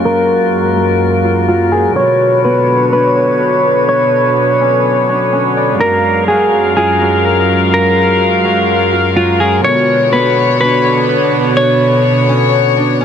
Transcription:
0.00 1.93 F#2 medium
0.00 0.75 F#3 medium
0.00 5.77 F#3 medium
0.00 1.93 G#3 medium
0.00 1.93 A#3 medium
0.00 0.54 C#4 medium
0.00 0.21 D4 medium
0.00 0.83 F4 medium
0.00 1.93 F4 medium
0.00 1.93 F#4 medium
0.00 1.69 A#4 medium
0.00 1.93 A#4 medium
0.00 1.93 F5 medium
0.05 1.95 A#4 medium
0.05 1.45 A#4 loud
0.77 1.47 F#3 medium
1.24 3.77 F4 medium
1.48 2.02 F#3 medium
1.48 1.71 F4 medium
1.72 1.95 G#4 medium
1.72 2.51 A#4 medium
1.96 5.77 B2 medium
1.96 5.77 D3 medium
1.96 5.77 B3 medium
1.96 5.77 D4 medium
1.96 5.77 B4 medium
1.96 2.42 C#5 loud
1.96 3.16 C#5 medium
1.96 5.77 C#5 medium
2.45 5.55 B3 medium
2.45 2.90 B4 medium
2.93 4.67 D4 medium
2.93 3.85 B4 medium
3.16 5.07 C#5 medium
3.40 5.45 B4 medium
3.89 5.29 C#5 medium
4.61 5.32 C#4 medium
5.09 7.89 D4 medium
5.33 8.22 C#4 medium
5.57 7.42 D5 medium
5.80 9.61 F#2 medium
5.80 9.61 F#3 medium
5.80 9.61 G#3 medium
5.80 9.61 F4 medium
5.80 9.61 F#4 medium
5.80 9.61 A#4 medium
5.80 6.26 A#4 loud
5.80 7.25 A#4 loud
5.80 9.61 A#4 medium
5.80 9.61 F5 medium
6.28 7.00 F#3 medium
6.28 6.73 G#4 medium
6.77 8.50 F4 medium
6.77 7.69 G#4 medium
7.01 8.43 F#3 medium
7.25 9.37 A#4 medium
7.74 9.13 A#4 loud
8.44 9.15 F#3 medium
8.92 11.45 F4 medium
9.16 9.70 F#3 medium
9.16 9.39 F4 medium
9.40 9.63 G#4 medium
9.40 10.19 A#4 medium
9.64 13.05 B2 medium
9.64 13.05 D3 medium
9.64 13.05 B3 medium
9.64 13.05 D4 medium
9.64 13.05 F#4 medium
9.64 10.10 C#5 loud
9.64 10.84 C#5 medium
9.64 13.05 C#5 medium
9.64 11.55 C#5 medium
10.13 13.05 B3 medium
10.13 10.58 B4 medium
10.61 12.35 D4 medium
10.61 11.53 B4 medium
10.84 12.76 C#5 medium
11.09 13.05 B4 medium
11.57 12.97 C#5 medium
11.57 13.05 C#5 medium
12.29 13.00 C#4 medium
12.77 13.05 D4 medium
13.01 13.05 C#4 medium

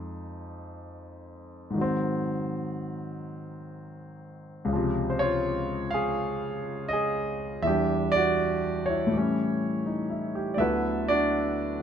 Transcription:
0.00 1.76 F2 soft
0.00 1.76 F3 soft
0.00 1.76 G#3 soft
0.00 1.76 D#4 soft
1.70 4.68 G#2 medium
1.70 4.69 D#3 soft
1.78 4.71 F#3 soft
1.78 4.73 C4 medium
4.65 7.62 C#2 medium
4.65 7.64 C#3 soft
4.72 7.67 C3 medium
4.72 7.66 F3 medium
5.10 5.19 C5 medium
5.19 5.90 F4 medium
5.19 5.89 C#5 medium
5.91 6.88 G#4 medium
5.91 6.86 F5 medium
6.88 7.66 D#5 medium
6.93 7.62 G#4 medium
7.62 9.11 E2 soft
7.62 9.08 E3 soft
7.62 9.12 G3 soft
7.62 8.09 E5 medium
7.67 9.13 D4 soft
7.67 8.12 G4 medium
8.12 8.89 D5 loud
8.16 8.85 F#4 medium
8.86 10.08 E4 medium
8.86 10.30 C#5 medium
9.07 10.57 A2 soft
9.07 10.58 E3 soft
9.13 10.60 G3 soft
9.18 10.62 C#4 medium
9.86 10.31 D#4 soft
10.10 10.48 E4 soft
10.35 10.73 G4 medium
10.54 11.82 D2 soft
10.54 10.59 D5 medium
10.54 11.04 E5 medium
10.59 11.78 D3 soft
10.59 11.82 F#3 soft
10.59 11.82 B3 medium
10.59 11.05 E4 medium
10.59 11.05 A4 medium
10.59 11.05 B4 medium
11.08 11.79 D4 medium
11.08 11.79 F#4 medium
11.08 11.78 D5 medium

